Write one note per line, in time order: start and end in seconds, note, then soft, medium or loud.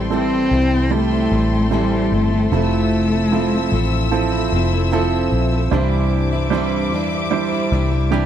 0.00 0.48 A1 medium
0.00 0.47 A2 soft
0.00 0.47 E3 medium
0.00 0.10 G3 medium
0.00 0.11 G3 soft
0.00 0.10 C4 medium
0.00 0.12 C4 soft
0.00 0.11 E4 medium
0.00 0.11 E4 soft
0.00 0.11 A4 medium
0.00 5.67 A4 medium
0.00 2.48 G5 medium
0.00 2.48 C6 medium
0.10 0.51 A2 medium
0.10 0.50 E3 medium
0.10 0.87 G3 medium
0.10 0.51 G3 medium
0.10 0.87 C4 medium
0.10 0.52 C4 medium
0.10 0.95 C4 medium
0.10 0.87 E4 medium
0.10 0.53 E4 medium
0.10 0.87 A4 medium
0.51 1.28 C2 medium
0.51 1.11 E3 medium
0.51 1.12 G3 soft
0.51 1.12 C4 medium
0.51 1.10 E4 soft
0.90 1.67 G3 medium
0.90 1.75 A3 medium
0.90 1.67 C4 medium
0.90 1.67 E4 medium
0.90 1.68 A4 medium
1.11 1.31 G3 soft
1.11 1.32 C4 soft
1.11 1.31 E4 soft
1.31 2.08 A1 medium
1.31 1.71 E3 soft
1.31 1.72 G3 medium
1.31 1.72 C4 soft
1.31 1.73 E4 medium
1.71 2.32 A2 medium
1.71 2.32 E3 medium
1.71 2.47 G3 medium
1.71 2.32 G3 medium
1.71 2.15 G3 medium
1.71 2.47 C4 soft
1.71 2.32 C4 medium
1.71 2.48 E4 medium
1.71 2.30 E4 medium
1.71 2.48 A4 medium
2.12 2.49 G1 medium
2.12 2.53 A3 medium
2.31 2.52 G3 soft
2.31 2.52 C4 soft
2.31 2.51 E4 soft
2.52 3.68 F1 medium
2.52 3.68 C3 medium
2.52 3.12 F3 medium
2.52 3.28 F3 medium
2.52 3.12 A3 medium
2.52 4.09 A3 medium
2.52 3.28 C4 medium
2.52 3.12 C4 medium
2.52 3.28 E4 medium
2.52 3.10 E4 medium
2.52 3.28 A4 medium
2.52 5.69 E5 medium
2.52 5.69 E6 medium
3.11 3.32 A3 soft
3.11 3.32 C4 soft
3.11 3.32 E4 soft
3.32 4.08 F3 medium
3.32 3.52 F3 medium
3.32 3.53 A3 medium
3.32 4.08 C4 medium
3.32 3.52 C4 medium
3.32 4.08 E4 medium
3.32 3.51 E4 medium
3.32 4.08 A4 medium
3.52 3.72 A3 soft
3.52 3.73 C4 soft
3.52 3.72 E4 soft
3.71 4.48 A1 medium
3.71 4.32 F3 medium
3.71 4.32 A3 medium
3.71 4.32 C4 medium
3.71 4.30 E4 medium
4.11 4.88 F3 medium
4.11 4.88 C4 medium
4.11 4.88 E4 medium
4.11 4.88 A4 medium
4.32 4.52 A3 soft
4.32 4.53 C4 soft
4.32 4.52 E4 medium
4.52 5.28 F1 medium
4.52 4.72 F3 medium
4.52 4.73 A3 medium
4.52 4.72 C4 medium
4.52 4.70 E4 medium
4.72 4.92 A3 soft
4.72 4.92 C4 soft
4.72 4.92 E4 medium
4.92 5.52 F3 medium
4.92 5.68 F3 medium
4.92 5.52 A3 medium
4.92 5.68 C4 medium
4.92 5.52 C4 medium
4.92 5.68 E4 medium
4.92 5.51 E4 medium
4.92 5.68 A4 medium
5.32 5.69 A#1 medium
5.52 5.73 A3 soft
5.52 5.73 C4 soft
5.52 5.72 E4 medium
5.71 6.92 C2 medium
5.71 6.88 G2 medium
5.71 6.32 C3 medium
5.71 6.32 E3 medium
5.71 6.48 G3 medium
5.71 6.32 G3 medium
5.71 6.48 D4 medium
5.71 6.33 D4 medium
5.71 6.48 E4 medium
5.71 6.31 E4 medium
5.71 6.48 C5 medium
5.71 8.26 C5 medium
5.71 8.26 E5 medium
5.71 8.26 D6 medium
6.32 6.52 G3 soft
6.32 6.53 D4 medium
6.32 6.52 E4 medium
6.50 6.92 C3 medium
6.50 6.91 E3 medium
6.50 7.27 G3 medium
6.50 6.93 G3 medium
6.50 7.27 D4 medium
6.50 7.28 E4 medium
6.50 7.27 C5 medium
6.54 6.93 D4 medium
6.54 6.93 E4 medium
6.92 7.68 E2 medium
6.92 7.52 E3 medium
6.92 7.53 G3 medium
6.92 7.53 D4 medium
6.92 7.51 E4 medium
7.31 8.07 G3 medium
7.31 8.08 D4 medium
7.31 8.07 E4 medium
7.31 8.08 C5 medium
7.52 7.71 G3 soft
7.52 7.72 D4 soft
7.52 7.72 E4 medium
7.72 8.26 C2 medium
7.72 7.92 E3 medium
7.72 7.92 G3 medium
7.72 7.92 D4 medium
7.72 7.90 E4 medium
7.91 8.11 G3 soft
7.91 8.12 D4 soft
7.91 8.12 E4 medium
8.11 8.26 C3 medium
8.11 8.26 E3 medium
8.11 8.26 G3 medium
8.11 8.26 D4 medium
8.11 8.26 E4 medium
8.11 8.26 E4 loud
8.11 8.26 G4 medium